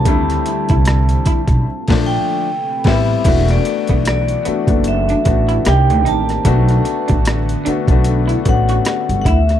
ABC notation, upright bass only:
X:1
M:4/4
L:1/16
Q:"Swing 16ths" 1/4=75
K:Em
V:1 name="Upright bass" clef=bass
D,,2 z C,,3 z B,,, z _B,,,2 z3 A,,,2 | E,,,2 z B,,,3 z F,,,3 A,,,2 C,, D,, A,,,2 | B,,,2 z A,,,3 z B,,,3 A,,,2 z G,,, D,,2 |]